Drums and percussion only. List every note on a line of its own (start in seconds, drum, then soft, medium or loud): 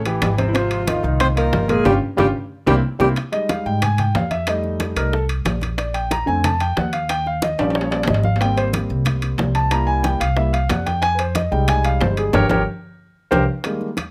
0.06 high conga soft
0.06 high timbale medium
0.22 high bongo medium
0.22 low bongo medium
0.22 high conga medium
0.22 high timbale loud
0.22 low timbale medium
0.38 high bongo soft
0.38 high conga medium
0.38 high timbale medium
0.54 high bongo medium
0.54 high conga soft
0.54 high timbale medium
0.71 high conga soft
0.71 high timbale medium
0.87 high bongo medium
0.87 high conga loud
0.87 high timbale medium
0.87 low timbale soft
1.04 high bongo soft
1.04 high conga soft
1.20 high bongo medium
1.20 high conga soft
1.20 low conga medium
1.20 high timbale medium
1.37 high bongo soft
1.37 high timbale medium
1.53 high bongo medium
1.53 low bongo medium
1.53 high conga medium
1.53 low timbale medium
1.69 high bongo soft
1.69 high conga medium
1.69 high timbale medium
1.85 low bongo loud
1.85 low conga medium
1.85 high timbale loud
2.18 low bongo medium
2.18 low conga loud
2.18 high timbale medium
2.67 low bongo loud
2.67 low conga loud
2.67 high timbale loud
3.00 low bongo medium
3.00 low conga medium
3.00 high timbale medium
3.16 high bongo medium
3.16 high conga soft
3.16 high timbale medium
3.33 high conga soft
3.33 high timbale medium
3.49 high bongo medium
3.49 high conga loud
3.49 high timbale medium
3.49 low timbale soft
3.66 high bongo soft
3.66 high conga soft
3.82 high bongo medium
3.82 high conga soft
3.82 low conga medium
3.82 high timbale loud
3.98 high bongo soft
3.98 high conga soft
3.98 low conga medium
3.98 high timbale medium
4.15 high bongo medium
4.15 low bongo medium
4.15 high conga medium
4.15 low timbale medium
4.31 high bongo soft
4.31 high conga medium
4.31 high timbale medium
4.47 high bongo medium
4.47 high timbale loud
4.64 high bongo soft
4.64 high conga soft
4.80 high bongo medium
4.80 high conga loud
4.80 high timbale medium
4.80 low timbale medium
4.96 high bongo soft
4.96 high conga soft
4.96 high timbale medium
5.13 high bongo medium
5.13 high conga soft
5.29 high conga soft
5.29 high timbale medium
5.45 high bongo medium
5.45 low bongo medium
5.45 high conga medium
5.45 high timbale medium
5.45 low timbale medium
5.61 high bongo soft
5.61 high conga medium
5.61 high timbale medium
5.78 high bongo medium
5.78 high conga soft
5.78 high timbale medium
5.94 high conga soft
5.94 high timbale medium
6.11 high bongo medium
6.11 high conga medium
6.11 high timbale medium
6.11 low timbale medium
6.28 high bongo soft
6.28 high conga soft
6.44 high bongo medium
6.44 high conga soft
6.44 low conga medium
6.44 high timbale loud
6.60 high bongo soft
6.60 high conga soft
6.60 high timbale medium
6.77 high bongo medium
6.77 low bongo medium
6.77 high conga medium
6.77 low timbale medium
6.93 high bongo soft
6.93 high timbale medium
7.09 high bongo medium
7.09 high conga soft
7.09 high timbale loud
7.26 high bongo soft
7.26 high conga soft
7.42 high bongo medium
7.42 high conga loud
7.42 high timbale medium
7.42 low timbale soft
7.58 high bongo soft
7.58 high conga soft
7.58 high timbale loud
7.70 high timbale medium
7.75 high bongo medium
7.75 high conga soft
7.81 low timbale medium
7.91 high conga soft
7.91 low timbale loud
8.03 high conga medium
8.03 low timbale medium
8.08 high bongo medium
8.08 low bongo medium
8.14 low timbale medium
8.23 high bongo soft
8.23 high conga medium
8.36 low timbale medium
8.41 high bongo medium
8.41 high conga soft
8.41 high timbale medium
8.57 high conga soft
8.57 high timbale medium
8.73 high bongo medium
8.73 high conga loud
8.73 high timbale medium
8.73 low timbale medium
8.90 high bongo soft
8.90 high conga soft
9.05 high bongo medium
9.05 high conga soft
9.05 low conga medium
9.05 high timbale loud
9.22 high bongo soft
9.22 high conga soft
9.22 high timbale medium
9.38 high bongo medium
9.38 low bongo medium
9.38 high conga medium
9.38 low timbale medium
9.55 high bongo soft
9.55 high timbale medium
9.71 high bongo medium
9.71 high timbale medium
9.88 high bongo soft
9.88 high conga soft
10.04 high bongo medium
10.04 high conga medium
10.04 high timbale medium
10.04 low timbale medium
10.21 high bongo soft
10.21 high conga soft
10.21 high timbale loud
10.37 high bongo medium
10.37 high conga soft
10.54 high conga soft
10.54 high timbale medium
10.70 high bongo medium
10.70 low bongo medium
10.70 high conga medium
10.70 high timbale medium
10.70 low timbale medium
10.86 high bongo soft
10.86 high conga medium
10.86 high timbale medium
11.02 high bongo medium
11.02 high conga soft
11.02 high timbale medium
11.19 high conga soft
11.19 high timbale medium
11.35 high bongo medium
11.35 high conga loud
11.35 high timbale medium
11.35 low timbale medium
11.52 high bongo soft
11.52 high conga soft
11.68 high bongo medium
11.68 high conga soft
11.68 low conga medium
11.68 high timbale loud
11.85 high bongo soft
11.85 high conga soft
11.85 high timbale medium
12.01 high bongo medium
12.01 low bongo medium
12.01 high conga medium
12.01 low timbale medium
12.17 high bongo soft
12.17 high timbale medium
12.33 low bongo loud
12.33 high conga loud
12.33 high timbale loud
12.49 low bongo medium
12.49 high conga loud
12.49 high timbale loud
13.32 low bongo medium
13.32 high conga loud
13.32 high timbale loud
13.64 high bongo medium
13.64 high conga soft
13.64 high timbale medium
13.81 high bongo soft
13.81 high conga soft
13.97 high bongo medium
13.97 high conga medium
13.97 high timbale medium
13.97 low timbale medium